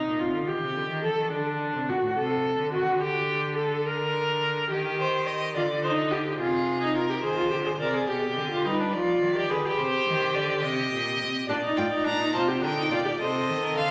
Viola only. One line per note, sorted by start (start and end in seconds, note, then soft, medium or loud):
0.00 0.21 D#4 medium
0.19 0.49 F4 medium
0.48 1.03 G4 medium
1.04 1.32 A4 medium
1.32 1.91 D4 medium
1.89 2.17 F#4 medium
2.18 2.72 A4 medium
2.73 3.01 F#4 medium
3.02 3.57 G4 medium
3.57 3.87 A4 medium
3.85 4.70 A#4 medium
4.71 5.54 G4 medium
5.56 5.64 F4 medium
5.83 6.13 D#4 medium
6.11 6.39 G4 medium
6.39 6.80 F4 medium
6.81 6.96 D#4 medium
6.95 7.08 F4 medium
7.09 7.15 G4 medium
7.23 7.37 G#4 medium
7.37 7.50 F4 medium
7.51 7.57 G4 medium
7.65 7.71 G#4 medium
7.80 7.95 A#4 medium
7.94 8.09 G#4 medium
8.08 8.50 G4 medium
8.51 8.66 F4 medium
8.65 8.79 D#4 medium
8.80 8.85 D4 medium
8.94 9.35 F4 medium
9.36 9.52 G4 medium
9.50 9.66 G#4 medium
9.65 11.48 G4 medium
11.49 11.55 D4 medium
11.63 11.78 D#4 medium
11.77 11.90 F4 medium
11.91 12.06 D#4 medium
12.04 12.21 D4 medium
12.19 12.33 D#4 medium
12.34 12.49 F4 medium
12.47 12.64 G4 medium
12.62 12.76 D4 medium
12.76 12.90 D#4 medium
12.90 12.96 F4 medium
13.04 13.10 G4 medium
13.20 13.91 A4 medium